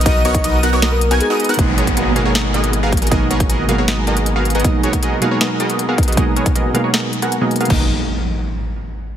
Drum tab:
CC |--------------------------------|--------------------------------|--------------------------------|--------------------------------|
HH |x---x-x-x---x---x---x-x-x---xxxx|x---x-x-x---x---x---x-x-x---xxxx|x---x-x-x---x---x---x-x-x---xxxx|x---x-x-x---x---x---x-x-x---xxxx|
SD |----------------o---------------|----------------o---------------|----------------o---------------|----------------o---------------|
BD |o-----o-------------------------|o-----o---------------------o---|o-----o-------------------------|o-----o---------------------o---|

CC |--------------------------------|x-------------------------------|
HH |x---x-x-x---x---x---x-x-x---xxxx|--------------------------------|
SD |----------------o---------------|--------------------------------|
BD |o-----o-------------------------|o-------------------------------|